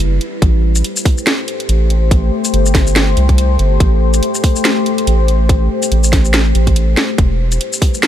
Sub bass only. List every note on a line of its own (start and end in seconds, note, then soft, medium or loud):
0.00 0.20 F#1 loud
0.42 0.83 A1 loud
1.69 2.31 A1 loud
2.53 3.15 G1 medium
3.17 3.58 C2 loud
3.59 3.79 G1 loud
3.80 4.21 A1 medium
5.07 5.69 A1 medium
5.91 6.53 A1 loud
6.55 6.96 A1 loud
7.18 7.59 E1 medium